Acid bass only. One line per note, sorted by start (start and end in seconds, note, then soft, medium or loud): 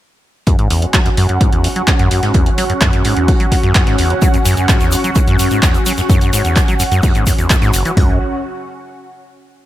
0.47 0.57 F#2 medium
0.59 0.69 G#2 medium
0.71 0.84 E2 medium
0.82 0.86 F#2 medium
0.94 1.00 F#3 medium
1.06 1.10 F#2 medium
1.17 1.27 F#2 loud
1.29 1.39 F#2 medium
1.41 1.51 G#2 medium
1.53 1.66 E2 medium
1.64 1.68 F#2 medium
1.76 1.82 F#3 medium
1.88 1.92 F#2 medium
1.99 2.09 F#2 loud
2.11 2.21 F#2 medium
2.23 2.33 G#2 medium
2.35 2.48 E2 medium
2.46 2.50 F#2 medium
2.58 2.64 F#3 medium
2.70 2.74 F#2 medium
2.81 2.91 F#2 loud
2.93 3.03 F#2 medium
3.05 3.15 G#2 medium
3.17 3.30 E2 medium
3.28 3.32 F#2 medium
3.40 3.46 F#3 medium
3.52 3.56 F#2 medium
3.63 3.73 F#2 loud
3.75 3.85 F#2 medium
3.87 3.97 G#2 medium
3.99 4.12 E2 medium
4.10 4.14 F#2 medium
4.22 4.29 F#3 medium
4.34 4.38 F#2 medium
4.45 4.55 F#2 loud
4.57 4.67 F#2 medium
4.69 4.79 G#2 medium
4.81 4.94 E2 medium
4.92 4.96 F#2 medium
5.04 5.11 F#3 medium
5.16 5.20 F#2 medium
5.28 5.37 F#2 loud
5.39 5.49 F#2 medium
5.51 5.61 G#2 medium
5.63 5.76 E2 medium
5.75 5.78 F#2 medium
5.86 5.93 F#3 medium
5.98 6.02 F#2 medium
6.10 6.19 F#2 loud
6.21 6.31 F#2 medium
6.33 6.43 G#2 medium
6.45 6.58 E2 medium
6.56 6.60 F#2 medium
6.68 6.75 F#3 medium
6.80 6.84 F#2 medium
6.92 7.01 F#2 loud
7.03 7.13 F#2 medium
7.15 7.25 G#2 medium
7.27 7.33 F#2 medium
7.38 7.48 E2 medium
7.50 7.57 F#2 medium
7.62 7.72 G#2 loud
7.74 7.83 F#1 medium
7.85 7.92 E3 medium
7.97 8.19 F#2 loud